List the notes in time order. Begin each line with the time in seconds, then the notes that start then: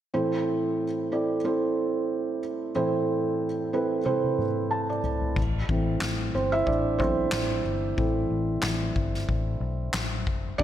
0.14 A2 E3 C4 E4 A4 C5
1.12 C4 E4 A4 D5
1.44 C4 E4 A4 C5
2.75 A2 E3 C4 E4 A4 C5
3.73 C4 E4 A4 B4
4.05 C4 E4 A4 C5, high tom
4.24 high tom
4.39 mid tom
4.71 A5
4.90 D5
5.04 floor tom
5.22 floor tom
5.36 A1, kick, crash
5.69 A1 E3 A3 C4, kick
6.01 A1, snare, clap
6.34 G1 C4 C5
6.52 E4 E5
6.66 A1 D4 D5, kick
6.99 B1 E3 A3 C4 C5, kick
7.32 A1, snare, clap
7.65 G1
7.97 A1 E3 A3 C4, kick
8.30 A1
8.62 A1, snare, clap
8.96 G1, kick
9.14 snare
9.29 A1, kick
9.60 B1
9.93 A1, snare, clap
10.27 F#1, kick
10.58 G1 D3 G3 B3 D4 D5, kick